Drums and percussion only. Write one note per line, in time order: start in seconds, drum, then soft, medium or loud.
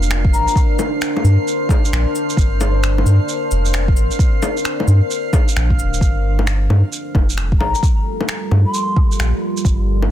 0.03 shaker medium
0.11 finger snap loud
0.11 shaker medium
0.25 kick loud
0.34 cabasa medium
0.48 shaker medium
0.56 kick loud
0.56 shaker medium
0.79 low bongo medium
0.79 cabasa medium
1.02 finger snap loud
1.02 shaker medium
1.17 low bongo medium
1.25 cabasa medium
1.48 shaker medium
1.69 kick loud
1.69 low bongo medium
1.69 cabasa medium
1.85 shaker medium
1.93 finger snap loud
1.93 shaker medium
2.15 cabasa medium
2.30 shaker medium
2.37 kick loud
2.37 shaker medium
2.61 low bongo medium
2.61 cabasa medium
2.84 finger snap loud
2.84 shaker medium
2.98 low bongo medium
3.06 cabasa medium
3.29 shaker medium
3.51 cabasa medium
3.66 shaker medium
3.74 finger snap loud
3.74 shaker medium
3.88 kick loud
3.96 cabasa medium
4.11 shaker medium
4.19 kick loud
4.19 shaker medium
4.42 low bongo medium
4.42 cabasa medium
4.57 shaker soft
4.65 finger snap loud
4.65 shaker medium
4.80 low bongo medium
4.88 cabasa medium
5.11 shaker medium
5.33 kick loud
5.33 low bongo medium
5.33 cabasa medium
5.48 shaker medium
5.57 finger snap loud
5.57 shaker medium
5.70 kick medium
5.79 cabasa medium
5.94 shaker medium
6.01 kick loud
6.01 shaker medium
6.39 low bongo medium
6.47 finger snap loud
6.47 shaker medium
6.70 low bongo soft
6.93 shaker medium
7.15 kick loud
7.15 low bongo medium
7.30 shaker medium
7.38 finger snap loud
7.52 kick loud
7.61 low bongo medium
7.75 shaker medium
7.83 kick loud
7.83 shaker medium
8.21 low bongo soft
8.29 finger snap loud
8.29 shaker medium
8.51 low bongo soft
8.74 shaker medium
8.96 kick loud
9.12 shaker medium
9.20 finger snap loud
9.20 shaker medium
9.57 shaker medium
9.65 kick loud
9.65 shaker medium
10.02 low bongo soft